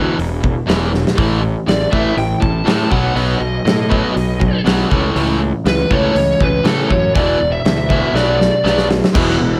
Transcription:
Already playing: E2 B2 E3
0.16 E1 E2 B2, open hi-hat
0.41 E2 B2, kick
0.66 E1 E2 B2 E3, snare, open hi-hat
0.91 E2 B2, snare
1.07 snare
1.15 A1 A2 E3 A3, kick, open hi-hat
1.41 A2 E3
1.66 A1 A2 E3 D5, snare, open hi-hat
1.91 A1 A2 E3 A3 E5, kick
2.16 A1 A2 E3 G5, open hi-hat
2.40 A1 A2 E3 A5, kick
2.64 A2 E3 A3, snare, open hi-hat
2.68 A5
2.90 B1 B2 F#3 B3 F#5, kick
3.15 B1 B2 F#3 B3 D#5, open hi-hat
3.40 B1 B2 F#3
3.65 A2 B2 F#3, snare, open hi-hat
3.89 B2 F#3 B3, kick
4.13 B1 B2 F#3
4.17 open hi-hat
4.39 B2 F#3, kick
4.64 B1 B2 F#3 B3, snare, open hi-hat
4.90 C#2 A2 E3 A3, kick
5.14 C#2 A2 E3 A3, open hi-hat
5.41 A2 E3
5.65 C#2 A2 E3 B4, snare, open hi-hat
5.90 C#2 A2 E3 A3 C#5, kick
6.15 C#2 A2 E3, open hi-hat
6.39 C#2 A2 E3 B4, kick
6.63 A2 C#3 E3 A3 A4, snare, open hi-hat
6.88 F#2 A2 E3 C#5, kick
7.14 E1 E2 B2 E3 D5, kick, open hi-hat
7.39 E1 E2 B2
7.52 E5
7.65 D2 E2 B2, snare, open hi-hat
7.90 E2 B2 E3 E5, kick
8.14 B1 B2 F#3 B3 D5, snare
8.37 B2 F#3, snare
8.64 B1 B2 F#3 B3, snare
8.78 snare
8.89 B2 F#3, snare
9.04 snare
9.15 E1 E2 B2 E3 E4 B4 F#5, kick, crash
9.29 snare
9.39 E1 E2 B2

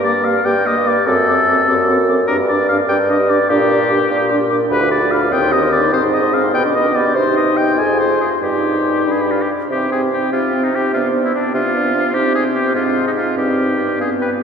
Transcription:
Already playing: G2
0.03 A#3 G4 D5 D6
0.24 A#3 G4 F5 D6
0.45 G2 A#3 G4 G5 D6
0.66 A#3 G4 D#5 D6
0.85 A#3 G4 D5 D6
1.06 F#2 C4 A4 D6
1.27 C4 A4 D6
1.47 C4 A4 D6
1.67 F#2 C4 A4 D6
1.88 C4 A4 D6
2.08 C4 A4 D6
2.27 G2 D4 G4 A#4 D6
2.48 D4 G4 D5 D6
2.69 D4 G4 F5 D6
2.89 G2 D4 G4 G5 D6
3.09 D4 G4 D#5 D6
3.29 D4 G4 D5 D6
3.49 A#2 D4 G4 D6
3.70 D4 G4 D6
3.90 D4 G4 D6
4.10 A#2 D4 G4 D6
4.30 D4 G4 D6
4.50 D4 G4 D6
4.70 D2 D4 G4 B4 B5
4.81 F4 B4 D6
4.91 D4 G4 D5 B5
5.01 F4 B4 D6
5.10 D4 G4 F5 B5
5.21 F4 B4 D6
5.31 D#2 C4 G4 G5 D#6
5.41 D#4 C5 C6
5.51 C4 G4 D#5 D#6
5.62 D#4 C5 C6
5.72 C4 G4 D5 D#6
5.82 D#4 C5 C6
5.92 G#2 C4 G#4 C5 D#6
6.02 D#4 C5 C6
6.12 C4 G#4 D#5 D#6
6.22 D#4 C5 C6
6.33 C4 G#4 F5 D#6
6.44 D#4 C5 C6
6.53 B2 B3 G4 G5 B5
6.64 D4 B4 D6
6.74 B3 G4 D#5 B5
6.85 D4 B4 D6
6.95 B3 G4 D5 B5
7.05 D4 B4 D6
7.15 C3 D#4 G4 C5 C6
7.37 D#5
7.57 G5
7.78 F2 F4 G#4 G#5 C6
7.99 C5
8.21 G#4
8.42 G2 D#4 G4 C6
9.06 G2 D4 G4 B5
9.12 G#4
9.22 G4
9.31 F4
9.42 G4
9.70 C3 C4 D#4 G4 G5
9.91 C4 D#4 G#4 G5
10.12 C4 D#4 G4 G5
10.32 C3 C4 D#4 F4 G5
10.53 C4 D#4 G5
10.63 D#4
10.73 C4 D#4 G4 G5
10.93 C3 B3 D4 F4 D5
11.13 B3 D4 D5
11.25 E4
11.34 B3 D4 D5
11.54 C3 B3 D4 F4 D5
11.73 B3 D4 D5
11.94 B3 D4 D5
12.13 C3 C4 D#4 G4 C5
12.35 G#4
12.44 D4
12.55 G4
12.74 G#2 C4 F4 C5
13.07 D#4
13.16 F4
13.36 G2 C4 D#4 G4 C5
14.00 B3 D4 G#4 F5
14.21 B4 G5

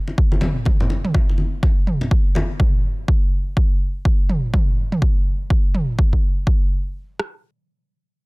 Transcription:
0.08 muted conga
0.18 kick
0.32 high conga
0.41 mid tom, muted conga, high conga
0.65 kick, mid tom, high conga
0.80 low conga
0.90 muted conga
1.05 mid tom
1.14 kick, high conga
1.29 muted conga
1.38 high conga
1.63 kick, muted conga
1.87 mid tom
2.01 muted conga, high conga
2.11 kick
2.35 muted conga, high conga
2.60 kick, mid tom
3.08 kick
3.57 kick
4.05 kick
4.29 mid tom
4.54 kick, mid tom
4.92 mid tom
5.02 kick
5.50 kick
5.75 mid tom
5.99 kick
6.13 kick
6.47 kick
7.20 cross-stick

